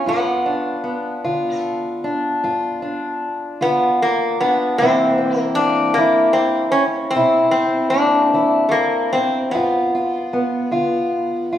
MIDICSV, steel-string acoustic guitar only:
0, 0, Header, 1, 2, 480
1, 0, Start_track
1, 0, Tempo, 789993
1, 44, Time_signature, 12, 3, 24, 8
1, 7036, End_track
2, 0, Start_track
2, 0, Title_t, "Steel-string acoustic guitar"
2, 0, Program_c, 0, 25
2, 37, Note_on_c, 0, 43, 71
2, 44, Note_on_c, 0, 65, 72
2, 278, Note_on_c, 0, 62, 55
2, 472, Note_off_c, 0, 43, 0
2, 508, Note_on_c, 0, 59, 60
2, 748, Note_off_c, 0, 65, 0
2, 756, Note_on_c, 0, 65, 67
2, 757, Note_on_c, 0, 50, 62
2, 1192, Note_off_c, 0, 50, 0
2, 1232, Note_off_c, 0, 62, 0
2, 1240, Note_on_c, 0, 62, 64
2, 1475, Note_off_c, 0, 65, 0
2, 1480, Note_on_c, 0, 43, 74
2, 1484, Note_on_c, 0, 65, 67
2, 1707, Note_off_c, 0, 62, 0
2, 1714, Note_on_c, 0, 62, 60
2, 1914, Note_off_c, 0, 43, 0
2, 1955, Note_off_c, 0, 59, 0
2, 2185, Note_off_c, 0, 65, 0
2, 2192, Note_on_c, 0, 65, 68
2, 2195, Note_on_c, 0, 50, 59
2, 2631, Note_off_c, 0, 50, 0
2, 2672, Note_off_c, 0, 62, 0
2, 2679, Note_on_c, 0, 62, 61
2, 2889, Note_off_c, 0, 65, 0
2, 2892, Note_off_c, 0, 62, 0
2, 2914, Note_on_c, 0, 48, 73
2, 2926, Note_on_c, 0, 52, 60
2, 2929, Note_on_c, 0, 58, 64
2, 2932, Note_on_c, 0, 60, 62
2, 2938, Note_on_c, 0, 64, 71
2, 3140, Note_off_c, 0, 60, 0
2, 3147, Note_on_c, 0, 60, 55
2, 3350, Note_off_c, 0, 48, 0
2, 3389, Note_off_c, 0, 58, 0
2, 3397, Note_on_c, 0, 58, 61
2, 3620, Note_off_c, 0, 52, 0
2, 3628, Note_off_c, 0, 64, 0
2, 3628, Note_on_c, 0, 52, 67
2, 3636, Note_on_c, 0, 64, 70
2, 4067, Note_off_c, 0, 52, 0
2, 4115, Note_off_c, 0, 60, 0
2, 4346, Note_off_c, 0, 64, 0
2, 4348, Note_on_c, 0, 48, 80
2, 4353, Note_on_c, 0, 64, 73
2, 4594, Note_on_c, 0, 60, 57
2, 4787, Note_off_c, 0, 48, 0
2, 4818, Note_off_c, 0, 58, 0
2, 4825, Note_on_c, 0, 58, 57
2, 5062, Note_off_c, 0, 64, 0
2, 5066, Note_on_c, 0, 52, 59
2, 5069, Note_on_c, 0, 64, 63
2, 5506, Note_off_c, 0, 52, 0
2, 5549, Note_off_c, 0, 60, 0
2, 5556, Note_on_c, 0, 60, 63
2, 5765, Note_off_c, 0, 58, 0
2, 5771, Note_off_c, 0, 60, 0
2, 5796, Note_off_c, 0, 64, 0
2, 5800, Note_on_c, 0, 65, 66
2, 5801, Note_on_c, 0, 43, 73
2, 6037, Note_off_c, 0, 65, 0
2, 6044, Note_on_c, 0, 65, 67
2, 6234, Note_off_c, 0, 43, 0
2, 6278, Note_on_c, 0, 59, 58
2, 6506, Note_off_c, 0, 65, 0
2, 6510, Note_on_c, 0, 50, 62
2, 6513, Note_on_c, 0, 65, 69
2, 6948, Note_off_c, 0, 50, 0
2, 6995, Note_off_c, 0, 65, 0
2, 7003, Note_on_c, 0, 65, 61
2, 7036, Note_off_c, 0, 59, 0
2, 7036, Note_off_c, 0, 65, 0
2, 7036, End_track
0, 0, End_of_file